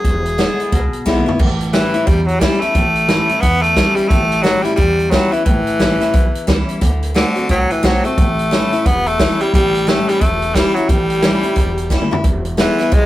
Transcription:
Already playing: tenor saxophone G#4
0.04 upright bass E1, steel-string acoustic guitar E2, kick, closed hi-hat
0.26 closed hi-hat
0.38 steel-string acoustic guitar D3 G#3 B3 E4, snare, closed hi-hat
0.60 muted upright bass stroke, closed hi-hat
0.72 upright bass C#2, steel-string acoustic guitar B2, kick, closed hi-hat
0.93 muted upright bass stroke, closed hi-hat
1.06 upright bass B1, steel-string acoustic guitar D3 G#3 B3 E4, kick, snare
1.18 mid tom
1.26 steel-string acoustic guitar B3 E4, floor tom
1.39 upright bass A1, steel-string acoustic guitar A2, kick, crash
1.61 closed hi-hat
1.73 steel-string acoustic guitar E3 G3 C#4 E4, tenor saxophone E3, snare, closed hi-hat
1.94 steel-string acoustic guitar C#4 E4, muted upright bass stroke, closed hi-hat
2.06 steel-string acoustic guitar E2, upright bass E2, tenor saxophone G3, kick, closed hi-hat
2.23 tenor saxophone G3
2.27 tenor saxophone F#3, closed hi-hat
2.40 steel-string acoustic guitar E3 G3 C#4 E4, tenor saxophone G3, kick, snare, closed hi-hat
2.60 tenor saxophone A3, steel-string acoustic guitar C#4 E4, muted upright bass stroke, closed hi-hat
2.75 upright bass A1, steel-string acoustic guitar A2, kick, closed hi-hat
2.96 closed hi-hat
3.09 steel-string acoustic guitar E3 G3 C#4 E4, snare, closed hi-hat
3.29 steel-string acoustic guitar C#4 E4, muted upright bass stroke, closed hi-hat
3.41 steel-string acoustic guitar E2, upright bass E2, tenor saxophone B3, kick, closed hi-hat
3.62 tenor saxophone A3, closed hi-hat
3.76 steel-string acoustic guitar E3 G3 C#4 E4, kick, snare, closed hi-hat
3.95 tenor saxophone G3, muted upright bass stroke, closed hi-hat
4.08 upright bass A1, steel-string acoustic guitar A2, tenor saxophone A3, kick, closed hi-hat
4.31 closed hi-hat
4.43 steel-string acoustic guitar E3 G3 C#4 E4, tenor saxophone F#3, snare, closed hi-hat
4.63 tenor saxophone G3, steel-string acoustic guitar C#4 E4, muted upright bass stroke, closed hi-hat
4.76 steel-string acoustic guitar E2, upright bass E2, tenor saxophone G3, kick, closed hi-hat
4.99 closed hi-hat
5.11 steel-string acoustic guitar E3 G3 C#4 E4, tenor saxophone F#3, kick, snare, closed hi-hat
5.32 tenor saxophone E3, steel-string acoustic guitar C#4 E4, muted upright bass stroke, closed hi-hat
5.45 upright bass A1, steel-string acoustic guitar A2, tenor saxophone E3, kick, closed hi-hat
5.66 muted upright bass stroke, closed hi-hat
5.79 upright bass A1, steel-string acoustic guitar E3 G3 C#4 E4, snare, closed hi-hat
6.00 steel-string acoustic guitar C#4 E4, muted upright bass stroke, snare, closed hi-hat
6.14 upright bass B1, steel-string acoustic guitar E2, kick, closed hi-hat
6.35 closed hi-hat
6.47 upright bass C#2, steel-string acoustic guitar E3 G3 C#4 E4, kick, snare, closed hi-hat
6.69 closed hi-hat
6.81 upright bass D2, steel-string acoustic guitar D3, kick, closed hi-hat
7.03 closed hi-hat
7.14 steel-string acoustic guitar D3 A3 C4 F#4, tenor saxophone D3, snare, closed hi-hat
7.36 steel-string acoustic guitar C4 F#4, muted upright bass stroke, closed hi-hat
7.49 upright bass C2, steel-string acoustic guitar A2, tenor saxophone F#3, kick, closed hi-hat
7.70 tenor saxophone E3, closed hi-hat
7.83 upright bass B1, steel-string acoustic guitar D3 A3 C4 F#4, tenor saxophone F#3, kick, snare, closed hi-hat
8.04 tenor saxophone A3, steel-string acoustic guitar C4 F#4, closed hi-hat
8.18 upright bass A1, steel-string acoustic guitar A2, kick, closed hi-hat
8.39 closed hi-hat
8.51 steel-string acoustic guitar E3 G3 C#4 E4, snare, closed hi-hat
8.72 steel-string acoustic guitar C#4 E4, muted upright bass stroke, closed hi-hat
8.86 upright bass E1, steel-string acoustic guitar E2, tenor saxophone B3, kick, closed hi-hat
9.06 tenor saxophone A3, closed hi-hat
9.19 steel-string acoustic guitar E3 G3 C#4 E4, kick, snare, closed hi-hat
9.40 tenor saxophone G3, steel-string acoustic guitar C#4 E4, muted upright bass stroke, closed hi-hat
9.54 upright bass A1, steel-string acoustic guitar A2, tenor saxophone G3, kick, closed hi-hat
9.75 closed hi-hat
9.87 steel-string acoustic guitar E3 G3 C#4 E4, tenor saxophone A3, snare, closed hi-hat
10.08 tenor saxophone G3, muted upright bass stroke, snare, closed hi-hat
10.21 upright bass E1, steel-string acoustic guitar E2, tenor saxophone A3, kick, closed hi-hat
10.42 closed hi-hat
10.55 steel-string acoustic guitar E3 G3 C#4 E4, tenor saxophone G3, kick, snare, closed hi-hat
10.75 tenor saxophone F#3, steel-string acoustic guitar C#4 E4, muted upright bass stroke, closed hi-hat
10.89 upright bass A1, steel-string acoustic guitar A2, tenor saxophone G3, kick, closed hi-hat
11.10 closed hi-hat
11.22 steel-string acoustic guitar E3 G3 C#4 E4, snare, closed hi-hat
11.43 steel-string acoustic guitar C#4 E4, muted upright bass stroke, closed hi-hat
11.56 upright bass E1, steel-string acoustic guitar E2, kick, closed hi-hat
11.77 closed hi-hat
11.90 steel-string acoustic guitar E3 G3 C#4 E4, kick, snare
12.02 mid tom
12.11 steel-string acoustic guitar C#4 E4, muted upright bass stroke, floor tom
12.24 upright bass E1, steel-string acoustic guitar E2, kick, closed hi-hat
12.45 closed hi-hat
12.57 steel-string acoustic guitar D3 G#3 B3 E4, tenor saxophone E3, snare, closed hi-hat
12.79 steel-string acoustic guitar B3 E4, muted upright bass stroke, snare, closed hi-hat
12.92 upright bass B1, steel-string acoustic guitar B2, tenor saxophone G#3, kick, closed hi-hat

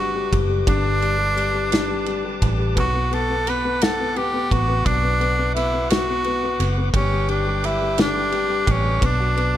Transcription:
Already playing: fingered electric bass G1, felt piano D4, tenor saxophone F#4, tonewheel organ B4 D6
0.00 felt piano G3
0.15 felt piano G3
0.32 fingered electric bass F#1, felt piano G3, kick, ride
0.49 felt piano G3
0.67 fingered electric bass G1, felt piano D3, tenor saxophone D4, tonewheel organ A5, kick, ride
0.84 felt piano G3
1.02 felt piano G3, ride
1.18 felt piano G3
1.36 felt piano G3, ride
1.54 felt piano G3
1.72 felt piano D4, snare, ride
1.90 felt piano G3
2.06 felt piano G3, ride
2.25 felt piano G3
2.42 fingered electric bass A1, felt piano G3, kick, ride
2.58 felt piano G3
2.76 fingered electric bass B1, felt piano B3, tenor saxophone F#4, tonewheel organ F#5, kick, ride
2.94 felt piano B3
3.11 felt piano B3, tenor saxophone A4, ride
3.30 felt piano B3
3.47 felt piano B3, tenor saxophone B4, ride
3.65 felt piano B3
3.82 tenor saxophone A4, felt piano F#5, snare, ride
4.00 felt piano B3
4.16 felt piano B3, tenor saxophone G4, ride
4.34 felt piano B3
4.51 fingered electric bass A1, felt piano B3, tenor saxophone F#4, kick, ride
4.68 felt piano B3
4.86 fingered electric bass B1, felt piano F#3, tenor saxophone D4, kick, ride
5.03 felt piano B3
5.21 felt piano B3, ride
5.39 felt piano B3
5.55 felt piano B3, tenor saxophone E4, ride
5.74 felt piano B3
5.90 tenor saxophone F#4, felt piano F#4, snare, ride
6.09 felt piano B3
6.24 felt piano B3, ride
6.43 felt piano B3
6.60 fingered electric bass F#1, felt piano B3, ride
6.78 felt piano B3
6.93 fingered electric bass G1, felt piano G3, tenor saxophone C#4, tonewheel organ B4 G5 D6, kick, ride
7.12 felt piano G3
7.29 felt piano G3, tenor saxophone D4, ride
7.47 felt piano G3
7.64 felt piano G3, tenor saxophone E4, ride
7.82 felt piano G3
7.98 felt piano D3, tenor saxophone D4, snare, ride
8.15 felt piano G3
8.31 felt piano G3, ride
8.48 felt piano G3
8.66 fingered electric bass A1, felt piano G3, kick, ride
8.71 tenor saxophone C#4
8.84 felt piano G3
9.01 fingered electric bass B1, felt piano B3, tonewheel organ A5, kick, ride
9.05 tenor saxophone D4
9.19 felt piano F#4
9.37 felt piano B3, ride

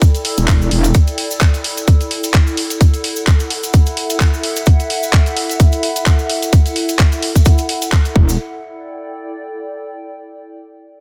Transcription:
Already playing: ambient pad E4 A4 D5 G5
0.02 kick, closed hi-hat, cabasa
0.15 closed hi-hat, cabasa
0.25 open hi-hat
0.38 wobble bass E1, closed hi-hat, cabasa
0.48 kick, clap, open hi-hat, cabasa
0.62 cabasa
0.71 wobble bass E1, open hi-hat
0.84 closed hi-hat, cabasa
0.94 kick, closed hi-hat, cabasa
1.07 closed hi-hat, cabasa
1.18 open hi-hat
1.31 cabasa
1.41 kick, clap, closed hi-hat, cabasa
1.54 closed hi-hat, cabasa
1.64 open hi-hat
1.77 closed hi-hat, cabasa
1.88 kick, closed hi-hat, cabasa
1.96 ambient pad F#5
2.01 closed hi-hat, cabasa
2.11 open hi-hat
2.24 closed hi-hat, cabasa
2.34 kick, clap, closed hi-hat, cabasa
2.47 cabasa
2.57 open hi-hat
2.70 closed hi-hat, cabasa
2.80 ambient pad E5, kick, closed hi-hat, cabasa
2.94 closed hi-hat, cabasa
3.04 open hi-hat
3.16 cabasa
3.27 kick, clap, closed hi-hat, cabasa
3.40 closed hi-hat, cabasa
3.50 open hi-hat
3.63 closed hi-hat, cabasa
3.73 kick, closed hi-hat, cabasa
3.86 closed hi-hat, cabasa
3.97 open hi-hat
4.10 closed hi-hat, cabasa
4.20 kick, clap, open hi-hat, cabasa
4.34 cabasa
4.43 open hi-hat
4.56 closed hi-hat, cabasa
4.66 kick, closed hi-hat, cabasa
4.80 closed hi-hat, cabasa
4.90 open hi-hat
5.03 cabasa
5.13 kick, clap, closed hi-hat, cabasa
5.26 closed hi-hat, cabasa
5.37 open hi-hat
5.49 closed hi-hat, cabasa
5.60 kick, closed hi-hat, cabasa
5.72 closed hi-hat, cabasa
5.83 open hi-hat
5.96 closed hi-hat, cabasa
6.06 kick, clap, closed hi-hat, cabasa
6.19 cabasa
6.30 open hi-hat
6.42 closed hi-hat, cabasa
6.53 kick, closed hi-hat, cabasa
6.66 closed hi-hat, cabasa
6.76 open hi-hat
6.89 closed hi-hat, cabasa
6.99 kick, clap, closed hi-hat, cabasa
7.12 closed hi-hat, cabasa
7.22 open hi-hat
7.35 kick, closed hi-hat, cabasa
7.45 kick, closed hi-hat, cabasa
7.58 closed hi-hat, cabasa
7.69 open hi-hat
7.82 closed hi-hat, cabasa
7.92 kick, clap, open hi-hat, cabasa
8.05 closed hi-hat, cabasa
8.16 wobble bass E1, ambient pad E4, kick
8.23 ambient pad A4
8.29 cabasa
8.54 ambient pad D5
8.60 ambient pad G5

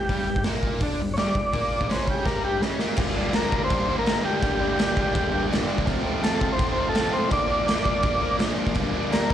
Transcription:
Already playing: transistor combo organ G4
0.09 overdriven electric guitar G2 G3, kick, open hi-hat
0.29 overdriven electric guitar G2
0.36 kick
0.43 overdriven electric guitar A#2, snare, open hi-hat
0.47 overdriven electric guitar A#3
0.63 kick
0.80 overdriven electric guitar D3 D4, kick, open hi-hat
1.01 overdriven electric guitar G2
1.14 transistor combo organ C#5, open hi-hat
1.18 overdriven electric guitar G2 G3, transistor combo organ D5, snare
1.35 kick
1.53 overdriven electric guitar A#2 A#3, kick, open hi-hat
1.81 kick
1.89 overdriven electric guitar C#3 C#4, transistor combo organ C5, snare, open hi-hat
2.08 transistor combo organ G4, kick
2.25 overdriven electric guitar G2 G3, transistor combo organ A#4, kick, snare
2.44 transistor combo organ G4
2.62 overdriven electric guitar C#3 C#4, snare
2.79 overdriven electric guitar A#2 A#3, snare
2.96 overdriven electric guitar G2 D3 G3 A#3 D4, kick, crash
3.16 overdriven electric guitar G2 D3 G3 A#3 D4
3.32 overdriven electric guitar G2 D3 G3 A#3 D4, transistor combo organ A#4, snare, crash
3.51 overdriven electric guitar G2 D3 G3 A#3 D4, kick
3.64 transistor combo organ C5
3.69 overdriven electric guitar G2 D3 G3 A#3 D4, kick, crash
3.87 overdriven electric guitar G2 D3 G3 A#3 D4
3.99 transistor combo organ A#4
4.06 overdriven electric guitar G2 D3 G3 A#3 D4, snare, crash
4.23 overdriven electric guitar G2 D3 G3 A#3 D4, transistor combo organ G4
4.42 overdriven electric guitar G2 D3 G3 A#3 D4, transistor combo organ G4, kick, crash
4.59 overdriven electric guitar G2 D3 G3 A#3 D4
4.77 overdriven electric guitar G2 D3 G3 A#3 D4, snare, crash
4.95 overdriven electric guitar G2 D3 G3 A#3 D4, kick
5.13 overdriven electric guitar G2 D3 G3 A#3 D4, kick, crash
5.31 overdriven electric guitar G2 D3 G3 A#3 D4
5.49 overdriven electric guitar G2 D3 G3 A#3 D4, crash
5.54 snare
5.67 overdriven electric guitar G2 D3 G3 A#3 D4
5.78 kick
5.86 overdriven electric guitar F2 C3 F3 A3 C4, kick, crash
6.03 overdriven electric guitar F2 C3 F3 A3 C4
6.21 overdriven electric guitar F2 C3 F3 A3 C4, transistor combo organ A4, snare, crash
6.40 overdriven electric guitar F2 C3 F3 A3 C4, kick
6.52 transistor combo organ C5
6.57 overdriven electric guitar F2 C3 F3 A3 C4, kick, crash
6.72 overdriven electric guitar F2 C3 F3 A3, transistor combo organ C5
6.76 overdriven electric guitar C4
6.89 overdriven electric guitar F2 C3, transistor combo organ A4
6.93 overdriven electric guitar F3 A3 C4, snare, crash
7.10 overdriven electric guitar F2 C3 F3 A3 C4, transistor combo organ C5
7.29 overdriven electric guitar A#2 F3 A#3 D4, transistor combo organ D5, kick, crash
7.47 overdriven electric guitar A#2 F3 A#3 D4
7.66 overdriven electric guitar A#2 F3 A#3 D4, snare, crash
7.85 overdriven electric guitar A#2 F3 A#3 D4, kick
8.01 overdriven electric guitar A#2 F3 A#3 D4, kick, crash
8.21 overdriven electric guitar A#2 F3 A#3 D4
8.38 overdriven electric guitar A#2 F3 A#3 D4, snare, crash
8.57 overdriven electric guitar A#2 F3 A#3 D4
8.67 kick
8.75 overdriven electric guitar G2 D3 G3 A#3 D4, kick, crash
8.93 overdriven electric guitar G2 D3 G3 A#3 D4
9.11 overdriven electric guitar G2 D3 G3 A#3 D4, transistor combo organ A#4, snare, crash
9.29 overdriven electric guitar G2 D3 G3 A#3 D4, kick

